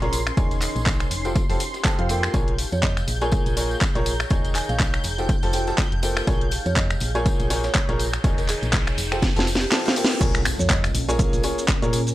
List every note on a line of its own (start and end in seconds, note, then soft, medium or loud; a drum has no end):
0.00 0.32 A#1 medium
0.00 0.17 A#3 medium
0.00 0.67 C#4 medium
0.00 0.17 F4 medium
0.00 0.17 G#4 medium
0.00 0.67 A#4 medium
0.00 0.17 A#4 medium
0.00 0.17 C#5 medium
0.00 1.11 G#5 medium
0.00 0.17 A#5 loud
0.00 2.35 C6 medium
0.00 snare medium
0.00 closed hi-hat soft
0.13 closed hi-hat medium
0.13 open hi-hat loud
0.13 tambourine loud
0.26 finger snap medium
0.26 closed hi-hat soft
0.26 tambourine soft
0.37 0.69 D#1 loud
0.37 1.10 D#3 medium
0.37 1.10 D#4 medium
0.37 1.60 D#4 medium
0.37 1.10 G#4 medium
0.37 1.10 A#4 medium
0.37 1.10 C#5 medium
0.37 1.10 G#5 medium
0.37 kick loud
0.37 closed hi-hat medium
0.37 tambourine medium
0.51 closed hi-hat soft
0.51 tambourine soft
0.61 clap medium
0.61 closed hi-hat medium
0.61 open hi-hat loud
0.61 tambourine loud
0.76 1.06 A#1 medium
0.76 closed hi-hat soft
0.76 tambourine soft
0.86 kick loud
0.86 snare loud
0.86 clap loud
0.86 closed hi-hat medium
0.86 open hi-hat medium
0.86 tambourine soft
1.00 finger snap medium
1.00 closed hi-hat soft
1.00 tambourine soft
1.11 1.43 F1 medium
1.11 2.34 G4 medium
1.11 closed hi-hat medium
1.11 open hi-hat loud
1.11 tambourine medium
1.25 1.40 F3 medium
1.25 1.40 F4 medium
1.25 1.40 G4 medium
1.25 1.40 A4 medium
1.25 1.40 C5 medium
1.25 1.40 G5 medium
1.25 closed hi-hat soft
1.25 tambourine soft
1.35 3.13 F5 medium
1.35 kick loud
1.35 closed hi-hat medium
1.35 tambourine soft
1.50 1.57 F1 loud
1.50 1.59 F3 medium
1.50 1.59 F4 medium
1.50 1.59 G4 medium
1.50 1.59 A4 medium
1.50 1.59 C5 medium
1.50 1.59 A5 medium
1.50 snare soft
1.50 open hi-hat medium
1.50 tambourine soft
1.60 closed hi-hat medium
1.60 open hi-hat loud
1.60 tambourine medium
1.74 snare soft
1.74 closed hi-hat soft
1.74 tambourine soft
1.85 1.97 F3 medium
1.85 1.97 F4 medium
1.85 1.97 G4 medium
1.85 1.97 A4 medium
1.85 1.97 C5 medium
1.85 1.97 A5 loud
1.85 kick loud
1.85 snare loud
1.85 clap loud
1.85 closed hi-hat medium
1.85 tambourine medium
1.99 2.29 F2 medium
1.99 2.08 F3 medium
1.99 2.08 F4 medium
1.99 2.08 G4 medium
1.99 2.08 A4 medium
1.99 2.08 C5 medium
1.99 2.08 F5 loud
1.99 closed hi-hat soft
2.09 2.31 A#3 medium
2.09 2.31 F4 medium
2.09 2.31 G4 medium
2.09 2.31 A4 medium
2.09 2.31 C5 medium
2.09 2.31 G5 loud
2.09 closed hi-hat medium
2.09 open hi-hat loud
2.09 tambourine medium
2.23 finger snap medium
2.23 snare medium
2.23 tambourine soft
2.34 2.66 A#1 loud
2.34 2.51 A#3 medium
2.34 2.51 F4 medium
2.34 4.61 G#4 medium
2.34 2.51 G#4 medium
2.34 2.51 A#4 medium
2.34 2.51 C#5 medium
2.34 2.51 G#5 medium
2.34 10.22 G6 medium
2.34 kick loud
2.34 closed hi-hat medium
2.34 tambourine medium
2.48 5.04 C#5 medium
2.48 closed hi-hat soft
2.58 closed hi-hat medium
2.58 open hi-hat loud
2.58 tambourine medium
2.72 3.02 F2 medium
2.72 2.81 C#5 medium
2.72 closed hi-hat soft
2.72 tambourine soft
2.83 3.32 D#5 medium
2.83 kick loud
2.83 snare loud
2.83 clap loud
2.83 closed hi-hat medium
2.83 tambourine soft
2.94 4.61 A#5 medium
2.94 finger snap medium
2.94 closed hi-hat medium
2.94 tambourine soft
3.08 3.39 A#1 medium
3.08 closed hi-hat medium
3.08 open hi-hat loud
3.08 tambourine medium
3.21 3.54 A#3 loud
3.21 3.54 F4 medium
3.21 3.54 G#4 medium
3.21 3.54 A#4 medium
3.21 3.54 C#5 medium
3.21 3.54 G#5 loud
3.21 closed hi-hat soft
3.21 tambourine soft
3.32 kick loud
3.32 closed hi-hat medium
3.32 tambourine medium
3.46 3.76 A#1 medium
3.46 closed hi-hat medium
3.46 tambourine soft
3.57 3.74 A#3 medium
3.57 3.74 F4 medium
3.57 3.74 G#4 medium
3.57 3.74 A#4 medium
3.57 3.74 C#5 medium
3.57 3.74 G#5 medium
3.57 closed hi-hat medium
3.57 open hi-hat loud
3.57 tambourine loud
3.71 tambourine soft
3.81 kick loud
3.81 snare loud
3.81 clap loud
3.81 closed hi-hat medium
3.81 tambourine medium
3.95 4.25 A#1 medium
3.95 4.10 A#3 medium
3.95 4.10 F4 medium
3.95 4.10 G#4 medium
3.95 4.10 A#4 medium
3.95 4.10 C#5 medium
3.95 4.10 A#5 loud
3.95 snare medium
3.95 closed hi-hat soft
4.06 closed hi-hat medium
4.06 open hi-hat loud
4.06 tambourine medium
4.20 finger snap medium
4.20 closed hi-hat soft
4.20 tambourine soft
4.30 4.62 D#1 loud
4.30 5.03 D#3 medium
4.30 5.54 D#4 medium
4.30 5.03 D#4 medium
4.30 5.03 G#4 medium
4.30 5.03 A#4 medium
4.30 5.03 C#5 medium
4.30 5.03 G#5 medium
4.30 kick loud
4.30 closed hi-hat medium
4.30 tambourine soft
4.45 closed hi-hat medium
4.45 closed hi-hat soft
4.45 tambourine soft
4.55 4.66 G#5 medium
4.55 clap medium
4.55 closed hi-hat medium
4.55 open hi-hat loud
4.55 tambourine medium
4.69 4.99 A#1 medium
4.69 5.04 F5 medium
4.69 closed hi-hat soft
4.69 tambourine soft
4.79 kick loud
4.79 snare loud
4.79 clap loud
4.79 closed hi-hat medium
4.79 open hi-hat medium
4.79 tambourine medium
4.94 finger snap medium
4.94 closed hi-hat medium
4.94 tambourine soft
5.04 5.36 F1 medium
5.04 6.27 G4 medium
5.04 closed hi-hat medium
5.04 open hi-hat loud
5.04 tambourine medium
5.18 5.33 F3 medium
5.18 5.33 F4 medium
5.18 5.33 G4 medium
5.18 5.33 A4 medium
5.18 5.33 C5 medium
5.18 5.33 G5 medium
5.18 closed hi-hat soft
5.18 tambourine soft
5.29 kick loud
5.29 closed hi-hat medium
5.29 tambourine soft
5.39 7.07 F5 medium
5.39 tambourine soft
5.43 5.73 F1 medium
5.43 5.52 F3 medium
5.43 5.52 F4 medium
5.43 5.52 G4 medium
5.43 5.52 A4 medium
5.43 5.52 C5 medium
5.43 5.52 A5 medium
5.43 snare soft
5.43 open hi-hat medium
5.53 5.65 F3 medium
5.53 5.65 F4 medium
5.53 5.65 G4 medium
5.53 5.65 A4 medium
5.53 5.65 C5 medium
5.53 5.65 G5 medium
5.53 closed hi-hat medium
5.53 open hi-hat loud
5.53 tambourine medium
5.67 5.82 F3 medium
5.67 5.82 F4 medium
5.67 5.82 G4 medium
5.67 5.82 A4 medium
5.67 5.82 C5 medium
5.67 5.82 A5 medium
5.67 snare soft
5.67 closed hi-hat soft
5.67 tambourine soft
5.78 kick loud
5.78 snare loud
5.78 clap loud
5.78 closed hi-hat medium
5.78 tambourine medium
5.92 6.22 F1 medium
5.92 closed hi-hat medium
6.03 6.25 A#3 medium
6.03 6.25 F4 medium
6.03 6.25 G4 medium
6.03 6.25 A4 medium
6.03 6.25 C5 medium
6.03 6.25 G5 medium
6.03 closed hi-hat medium
6.03 open hi-hat loud
6.03 tambourine loud
6.17 finger snap medium
6.17 snare medium
6.17 closed hi-hat soft
6.17 tambourine soft
6.27 6.59 A#1 loud
6.27 6.45 A#3 medium
6.27 6.45 F4 medium
6.27 8.54 G#4 medium
6.27 6.45 G#4 medium
6.27 6.45 A#4 medium
6.27 6.45 C#5 medium
6.27 6.45 G#5 medium
6.27 kick loud
6.27 closed hi-hat medium
6.27 tambourine soft
6.27 riser medium
6.41 closed hi-hat medium
6.51 closed hi-hat medium
6.51 open hi-hat loud
6.51 tambourine medium
6.60 8.98 C#5 medium
6.66 6.96 F2 medium
6.66 6.74 C#5 medium
6.66 closed hi-hat soft
6.66 tambourine soft
6.76 7.26 D#5 medium
6.76 kick loud
6.76 snare loud
6.76 clap loud
6.76 closed hi-hat medium
6.76 tambourine soft
6.90 finger snap medium
6.90 closed hi-hat medium
6.90 tambourine soft
7.00 7.33 A#1 medium
7.00 closed hi-hat medium
7.00 open hi-hat loud
7.00 tambourine medium
7.09 8.54 A#5 medium
7.15 7.48 A#3 loud
7.15 7.48 F4 medium
7.15 7.48 G#4 medium
7.15 7.48 A#4 medium
7.15 7.48 C#5 medium
7.15 7.48 G#5 loud
7.15 closed hi-hat soft
7.15 tambourine soft
7.26 kick loud
7.26 closed hi-hat medium
7.26 tambourine medium
7.39 7.70 A#1 medium
7.39 closed hi-hat medium
7.39 tambourine soft
7.50 7.68 A#3 medium
7.50 7.68 F4 medium
7.50 7.67 G#4 medium
7.50 7.68 A#4 medium
7.50 7.68 C#5 medium
7.50 7.68 G#5 medium
7.50 snare loud
7.50 closed hi-hat medium
7.50 open hi-hat loud
7.50 tambourine medium
7.63 7.82 C#5 medium
7.63 snare loud
7.63 closed hi-hat medium
7.63 tambourine soft
7.75 kick loud
7.75 snare loud
7.75 clap loud
7.75 closed hi-hat medium
7.75 tambourine medium
7.89 8.19 A#1 loud
7.89 8.04 A#3 medium
7.89 8.04 F4 medium
7.89 8.04 G#4 medium
7.89 8.04 A#4 medium
7.89 8.04 C#5 medium
7.89 8.04 A#5 loud
7.89 snare medium
7.89 closed hi-hat medium
7.99 closed hi-hat medium
7.99 open hi-hat loud
7.99 tambourine medium
8.13 finger snap medium
8.13 closed hi-hat soft
8.13 tambourine soft
8.24 8.56 D#1 loud
8.24 8.97 D#3 medium
8.24 9.47 D#4 medium
8.24 8.97 D#4 medium
8.24 8.97 G#4 medium
8.24 8.97 A#4 medium
8.24 8.97 C#5 medium
8.24 8.97 G#5 medium
8.24 kick loud
8.24 closed hi-hat medium
8.24 tambourine medium
8.38 8.47 A#4 medium
8.38 closed hi-hat soft
8.38 closed hi-hat medium
8.38 tambourine soft
8.48 8.68 G#4 medium
8.48 clap medium
8.48 closed hi-hat medium
8.48 open hi-hat loud
8.48 tambourine loud
8.63 8.93 A#1 medium
8.63 closed hi-hat soft
8.63 tambourine soft
8.73 kick loud
8.73 snare loud
8.73 clap loud
8.73 closed hi-hat medium
8.73 open hi-hat medium
8.73 tambourine soft
8.87 finger snap medium
8.87 closed hi-hat medium
8.87 tambourine soft
8.98 9.30 F1 medium
8.98 11.00 F4 medium
8.98 closed hi-hat medium
8.98 open hi-hat loud
8.98 tambourine loud
9.12 9.27 F3 medium
9.12 9.27 F4 medium
9.12 9.27 G4 medium
9.12 9.27 A4 medium
9.12 9.27 C5 medium
9.12 9.27 G5 medium
9.12 finger snap medium
9.12 closed hi-hat soft
9.12 tambourine soft
9.22 kick loud
9.22 snare medium
9.22 closed hi-hat medium
9.22 tambourine medium
9.30 10.21 A4 medium
9.36 9.66 F1 medium
9.36 9.45 F3 medium
9.36 9.45 F4 medium
9.36 9.45 G4 medium
9.36 9.45 A4 medium
9.36 9.45 C5 medium
9.36 9.45 A5 medium
9.36 snare medium
9.36 closed hi-hat medium
9.36 open hi-hat medium
9.36 tambourine soft
9.47 open hi-hat loud
9.47 tambourine medium
9.55 snare medium
9.61 9.96 G4 medium
9.61 closed hi-hat medium
9.61 closed hi-hat soft
9.61 tambourine soft
9.72 9.84 F3 loud
9.72 9.84 F4 medium
9.72 9.84 G4 medium
9.72 9.84 A4 medium
9.72 9.83 C5 medium
9.72 9.84 A5 loud
9.72 snare medium
9.72 clap loud
9.72 closed hi-hat medium
9.72 tambourine soft
9.85 9.95 F3 medium
9.85 9.95 F4 medium
9.85 9.95 G4 medium
9.85 9.95 A4 medium
9.85 9.95 C5 medium
9.85 9.95 F5 loud
9.85 snare medium
9.85 closed hi-hat medium
9.85 tambourine soft
9.96 10.18 A#3 medium
9.96 10.18 F4 medium
9.96 10.18 G4 medium
9.96 10.18 A4 medium
9.96 10.18 C5 medium
9.96 10.18 G5 loud
9.96 closed hi-hat medium
9.96 open hi-hat loud
9.96 tambourine medium
10.04 snare loud
10.10 closed hi-hat soft
10.10 tambourine soft
10.20 10.52 A#1 loud
10.20 10.38 A#3 medium
10.20 12.15 C#4 medium
10.20 10.38 F4 medium
10.20 10.38 G#4 medium
10.20 10.38 A#4 medium
10.20 10.38 C#5 medium
10.20 10.38 G#5 loud
10.20 kick loud
10.20 closed hi-hat medium
10.20 crash loud
10.20 tambourine medium
10.20 impact medium
10.20 shaker medium
10.35 finger snap medium
10.35 closed hi-hat medium
10.35 shaker soft
10.45 finger snap medium
10.45 closed hi-hat medium
10.45 open hi-hat loud
10.45 tambourine medium
10.50 12.15 A#4 medium
10.59 10.89 F2 medium
10.59 10.68 C#5 medium
10.59 closed hi-hat soft
10.59 tambourine soft
10.59 shaker medium
10.70 kick loud
10.70 snare loud
10.70 clap loud
10.70 closed hi-hat medium
10.70 tambourine medium
10.70 shaker medium
10.77 12.15 G#5 medium
10.84 finger snap medium
10.84 closed hi-hat medium
10.84 tambourine soft
10.84 shaker soft
10.95 11.26 A#1 medium
10.95 closed hi-hat medium
10.95 open hi-hat loud
10.95 tambourine medium
11.09 11.41 A#3 loud
11.09 11.41 F4 medium
11.09 11.41 G#4 medium
11.09 11.41 A#4 medium
11.09 11.41 C#5 medium
11.09 11.41 G#5 loud
11.09 closed hi-hat soft
11.09 tambourine soft
11.09 shaker medium
11.19 kick loud
11.19 closed hi-hat medium
11.19 tambourine soft
11.19 shaker medium
11.33 11.41 A#1 loud
11.33 closed hi-hat medium
11.33 tambourine soft
11.33 shaker soft
11.43 11.61 A#3 medium
11.43 11.61 F4 medium
11.43 11.61 G#4 medium
11.43 11.61 A#4 medium
11.43 11.61 C#5 medium
11.43 11.61 G#5 medium
11.43 closed hi-hat medium
11.43 open hi-hat loud
11.43 tambourine medium
11.58 tambourine soft
11.58 shaker medium
11.68 kick loud
11.68 snare loud
11.68 clap loud
11.68 closed hi-hat medium
11.68 tambourine medium
11.68 shaker medium
11.82 12.12 A#2 medium
11.82 11.97 A#3 medium
11.82 11.97 F4 medium
11.82 11.97 G#4 medium
11.82 11.97 A#4 medium
11.82 11.97 C#5 medium
11.82 11.97 A#5 loud
11.82 snare medium
11.82 closed hi-hat medium
11.82 shaker soft
11.93 closed hi-hat medium
11.93 open hi-hat loud
11.93 tambourine medium
12.07 closed hi-hat soft
12.07 tambourine soft
12.07 shaker medium